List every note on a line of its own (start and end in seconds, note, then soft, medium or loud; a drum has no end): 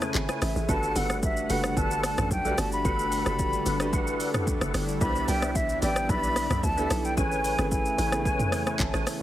0.00 0.67 C#3 medium
0.00 0.67 A3 medium
0.00 0.69 A3 medium
0.00 0.71 C#4 medium
0.00 0.65 E4 medium
0.00 0.71 E4 medium
0.00 0.67 G#4 medium
0.00 0.71 G#4 medium
0.00 0.70 B4 medium
0.00 0.13 B4 medium
0.00 0.71 C5 medium
0.00 0.70 C#5 medium
0.00 0.13 C#5 medium
0.00 0.14 G#5 medium
0.00 0.13 A5 medium
0.00 cross-stick loud
0.00 low bongo medium
0.00 shaker medium
0.15 0.28 G#1 loud
0.15 0.40 G#5 medium
0.15 clap loud
0.15 high bongo medium
0.15 shaker medium
0.29 0.40 B4 medium
0.29 0.41 C#5 medium
0.29 0.41 G#5 medium
0.29 cross-stick loud
0.29 low bongo medium
0.29 shaker medium
0.42 0.55 A1 loud
0.42 0.67 E5 medium
0.42 cross-stick loud
0.42 open hi-hat medium
0.42 shaker loud
0.56 0.68 A1 medium
0.56 shaker medium
0.69 0.94 G1 loud
0.69 7.13 D3 medium
0.69 7.13 G3 medium
0.69 1.34 A3 medium
0.69 4.97 A3 medium
0.69 7.13 D4 medium
0.69 1.34 D4 medium
0.69 1.34 F#4 medium
0.69 1.35 G4 medium
0.69 1.19 A4 loud
0.69 1.19 B4 medium
0.69 1.35 B4 medium
0.69 2.83 F#5 medium
0.69 1.19 F#5 loud
0.69 0.98 A5 loud
0.69 kick loud
0.69 shaker medium
0.83 shaker medium
0.96 1.46 G1 loud
0.96 1.23 F#5 medium
0.96 open hi-hat medium
0.96 shaker loud
1.10 cross-stick medium
1.10 shaker medium
1.23 1.52 E5 medium
1.23 kick loud
1.23 shaker medium
1.37 shaker medium
1.50 1.75 F#1 medium
1.50 2.26 A3 medium
1.50 2.26 D4 medium
1.50 2.26 F#4 medium
1.50 2.26 G4 medium
1.50 1.62 A4 medium
1.50 1.63 B4 medium
1.50 2.27 B4 medium
1.50 1.63 F#5 medium
1.50 1.79 F#5 medium
1.50 open hi-hat medium
1.50 shaker loud
1.64 cross-stick loud
1.64 shaker medium
1.77 2.15 G1 loud
1.77 2.14 A4 loud
1.77 2.15 B4 medium
1.77 2.15 F#5 loud
1.77 2.04 A5 loud
1.77 kick loud
1.77 shaker medium
1.91 shaker medium
2.03 2.29 A5 loud
2.03 cross-stick loud
2.03 open hi-hat medium
2.03 shaker medium
2.18 2.30 A1 loud
2.18 2.30 A4 medium
2.18 2.30 B4 medium
2.18 2.30 F#5 medium
2.18 cross-stick loud
2.18 mid tom medium
2.18 shaker medium
2.31 2.56 B1 medium
2.31 2.60 G5 loud
2.31 kick loud
2.31 shaker medium
2.45 2.77 A3 medium
2.45 2.77 D4 medium
2.45 2.78 F#4 medium
2.45 2.78 G4 medium
2.45 2.57 A4 medium
2.45 2.57 B4 medium
2.45 2.78 D5 medium
2.45 2.57 F#5 medium
2.45 shaker medium
2.58 2.83 G1 loud
2.58 2.72 A5 loud
2.58 cross-stick loud
2.58 open hi-hat medium
2.58 shaker loud
2.72 4.31 B5 loud
2.72 shaker medium
2.85 3.23 G1 loud
2.85 3.18 A3 medium
2.85 3.18 D4 medium
2.85 9.22 E4 medium
2.85 3.18 F#4 medium
2.85 3.18 G4 medium
2.85 3.35 A4 loud
2.85 3.35 B4 medium
2.85 3.18 B4 medium
2.85 3.35 F#5 loud
2.85 kick loud
2.85 shaker medium
2.99 shaker medium
3.12 open hi-hat medium
3.12 shaker loud
3.26 3.63 F#1 medium
3.26 3.69 A3 medium
3.26 3.69 D4 medium
3.26 3.69 F#4 medium
3.26 3.70 G4 medium
3.26 3.70 A4 medium
3.26 cross-stick medium
3.26 shaker medium
3.39 kick medium
3.39 shaker medium
3.53 shaker medium
3.66 4.17 G1 medium
3.66 3.79 A4 medium
3.66 3.79 B4 medium
3.66 3.79 F#5 medium
3.66 open hi-hat medium
3.66 shaker loud
3.80 4.66 A3 medium
3.80 4.67 D4 medium
3.80 4.67 F#4 medium
3.80 4.67 G4 medium
3.80 4.67 B4 loud
3.80 cross-stick loud
3.80 shaker medium
3.93 4.31 A4 medium
3.93 4.31 B4 medium
3.93 4.31 F#5 loud
3.93 kick loud
3.93 shaker medium
4.07 shaker medium
4.20 open hi-hat medium
4.20 shaker medium
4.34 4.46 A4 medium
4.34 4.46 B4 medium
4.34 4.46 F#5 medium
4.34 cross-stick loud
4.34 mid tom medium
4.34 shaker medium
4.47 kick loud
4.47 shaker medium
4.61 4.73 F#1 medium
4.61 4.73 A4 medium
4.61 4.73 B4 medium
4.61 4.73 F#5 medium
4.61 cross-stick loud
4.61 shaker medium
4.74 4.99 G1 medium
4.74 cross-stick medium
4.74 open hi-hat medium
4.74 shaker loud
4.88 shaker medium
5.01 5.26 C2 loud
5.01 5.66 B2 medium
5.01 5.67 D4 medium
5.01 5.67 E4 medium
5.01 5.67 G4 medium
5.01 5.51 B4 loud
5.01 5.09 B4 medium
5.01 5.51 D5 medium
5.01 5.51 E5 loud
5.01 5.30 B5 loud
5.01 kick loud
5.01 shaker medium
5.09 5.70 C5 medium
5.15 shaker medium
5.28 5.79 C2 loud
5.28 5.57 G5 loud
5.28 open hi-hat medium
5.28 shaker loud
5.42 cross-stick loud
5.42 shaker medium
5.55 5.82 E5 loud
5.55 kick loud
5.55 shaker medium
5.69 shaker medium
5.82 6.08 A1 medium
5.82 6.58 B3 medium
5.82 6.58 D4 medium
5.82 6.58 E4 medium
5.82 6.59 G4 medium
5.82 5.95 B4 medium
5.82 5.95 D5 medium
5.82 6.59 D5 medium
5.82 5.95 E5 medium
5.82 6.11 G5 loud
5.82 open hi-hat medium
5.82 shaker loud
5.96 cross-stick loud
5.96 shaker medium
6.09 6.48 B1 loud
6.09 6.47 B4 medium
6.09 6.47 D5 medium
6.09 6.47 E5 loud
6.09 6.65 B5 loud
6.09 kick loud
6.09 shaker medium
6.23 shaker medium
6.36 cross-stick medium
6.36 open hi-hat medium
6.36 shaker medium
6.50 6.62 C2 loud
6.50 6.62 B4 medium
6.50 6.62 D5 medium
6.50 6.62 E5 medium
6.50 cross-stick loud
6.50 mid tom medium
6.50 shaker medium
6.63 6.89 D2 medium
6.63 7.07 A5 loud
6.63 kick loud
6.63 shaker medium
6.77 7.10 B3 medium
6.77 7.10 D4 medium
6.77 7.10 E4 medium
6.77 7.10 G4 medium
6.77 7.10 A4 medium
6.77 6.89 B4 medium
6.77 6.89 D5 medium
6.77 6.89 E5 medium
6.77 shaker medium
6.90 7.16 B1 loud
6.90 cross-stick medium
6.90 open hi-hat medium
6.90 shaker loud
7.05 7.17 G5 medium
7.05 shaker medium
7.17 7.56 A1 loud
7.17 9.22 C#3 medium
7.17 9.22 E3 medium
7.17 7.50 A3 medium
7.17 9.22 A3 medium
7.17 7.50 C#4 medium
7.17 7.50 E4 medium
7.17 7.51 G#4 medium
7.17 7.67 B4 loud
7.17 7.51 B4 medium
7.17 7.67 C#5 medium
7.17 7.67 G#5 loud
7.17 7.68 G#5 loud
7.17 kick loud
7.17 shaker medium
7.31 shaker medium
7.44 open hi-hat medium
7.44 shaker loud
7.58 7.96 G#1 medium
7.58 8.01 A3 medium
7.58 8.01 C#4 medium
7.58 8.02 E4 medium
7.58 8.02 G#4 medium
7.58 8.02 B4 medium
7.58 cross-stick loud
7.58 shaker medium
7.71 9.03 G#5 loud
7.71 kick loud
7.71 shaker medium
7.85 shaker medium
7.98 8.49 A1 loud
7.98 8.11 B4 medium
7.98 8.11 C#5 medium
7.98 8.11 G#5 medium
7.98 open hi-hat medium
7.98 shaker loud
8.12 8.99 A3 medium
8.12 8.19 B3 medium
8.12 8.99 E4 medium
8.12 8.99 G#4 medium
8.12 9.00 B4 medium
8.12 cross-stick loud
8.12 shaker medium
8.20 9.02 C#4 medium
8.25 8.63 B4 medium
8.25 8.63 C#5 medium
8.25 8.63 G#5 loud
8.25 kick loud
8.25 shaker medium
8.39 mid tom loud
8.39 shaker medium
8.52 8.78 C#5 medium
8.52 cross-stick loud
8.52 open hi-hat medium
8.52 shaker medium
8.66 8.78 B4 medium
8.66 8.78 C#5 medium
8.66 8.78 G#5 medium
8.66 cross-stick loud
8.66 shaker medium
8.80 8.93 G#1 medium
8.80 9.22 A5 medium
8.80 kick loud
8.80 clap loud
8.80 shaker medium
8.93 9.06 A1 loud
8.93 9.05 B4 medium
8.93 9.05 C#5 medium
8.93 9.06 G#5 medium
8.93 cross-stick loud
8.93 shaker medium
9.07 cross-stick medium
9.07 open hi-hat medium
9.07 shaker loud